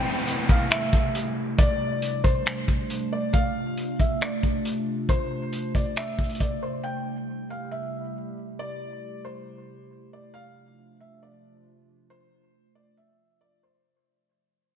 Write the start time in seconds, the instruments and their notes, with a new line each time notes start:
Already playing: ambient pad C3 G3 A3 E4, felt piano G5, downlifter
0.27 closed hi-hat
0.49 felt piano F5, kick, closed hi-hat
0.71 felt piano E5, finger snap, closed hi-hat
0.93 kick, closed hi-hat
1.15 closed hi-hat
1.58 ambient pad D4, felt piano D5, kick, closed hi-hat
2.02 closed hi-hat
2.24 felt piano C5, kick, closed hi-hat
2.46 finger snap, closed hi-hat
2.68 kick, closed hi-hat
2.90 closed hi-hat
3.12 felt piano D5
3.33 ambient pad F4, felt piano F5, kick, closed hi-hat
3.78 closed hi-hat
3.99 felt piano E5, kick, closed hi-hat
4.21 felt piano D5, finger snap, closed hi-hat
4.43 kick, closed hi-hat
4.65 closed hi-hat
5.09 felt piano C5, kick, closed hi-hat
5.53 closed hi-hat
5.75 felt piano D5, kick, closed hi-hat
5.96 felt piano E5, finger snap, closed hi-hat
6.18 kick, closed hi-hat
6.24 closed hi-hat
6.30 closed hi-hat
6.35 closed hi-hat
6.40 felt piano D5, kick, closed hi-hat
6.63 felt piano C5
6.84 ambient pad G3 E4 G4, felt piano G5
7.50 felt piano F5
7.71 felt piano E5
8.59 felt piano D5
9.25 felt piano C5
10.13 felt piano D5
10.34 ambient pad C3 F3 A3 D4 F4, felt piano F5
11.01 felt piano E5
11.23 felt piano D5
12.10 felt piano C5
12.75 felt piano D5
12.97 felt piano E5
13.41 felt piano D5
13.63 felt piano C5